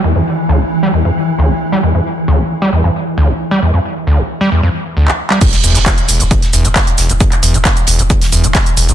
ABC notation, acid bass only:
X:1
M:4/4
L:1/16
Q:1/4=134
K:Ephr
V:1 name="Acid bass" clef=bass
E,, F,, z2 D,, E,,, z G, E,, F,, z2 D,, E,,, z G, | E,, F,, z2 D,, E,,, z G, E,, F,, z2 D,, E,,, z G, | E,, F,, z2 D,, E,,, z G, E,, F,, z2 D,, E,,, z G, | E,, z E,, B,, z2 E,,, B,, E,, z E,, B,, z2 E,,, B,, |
E,, z E,, B,, z2 E,,, B,, E,, z E,, B,, z2 E,,, B,, |]